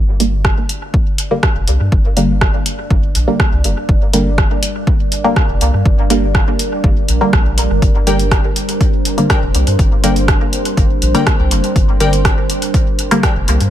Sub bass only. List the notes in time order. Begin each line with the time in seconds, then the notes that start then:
Already playing: G1
1.56 F1
1.68 C2
1.80 G2
1.92 G1
2.90 G1
3.15 A#1
3.52 C2
3.64 F1
3.89 G1
5.49 F1
5.61 C2
5.74 G2
5.86 G1
6.84 G1
7.09 A#1
7.33 A#1
7.70 G1
9.42 F1
9.54 C2
9.67 G2
9.79 G1
10.77 G1
11.02 A#1
11.39 C2
11.51 F1
11.76 G1
13.36 F1
13.48 C2
13.61 G2